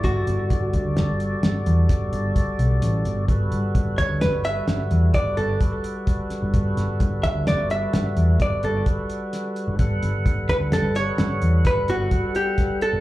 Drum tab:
HH |xxxxxxxxxxxxxx|xxxxxxxxxxxxxx|xxxxxxxxxxxxxx|xxxxxxxxxxxxxx|
SD |----o-o-o-----|----o-o------o|-o--o-o-----o-|---oo-o-----o-|
BD |o-oo----o-o---|o-oo----o-o-o-|o-oo----o-o---|o-oo----o-o-o-|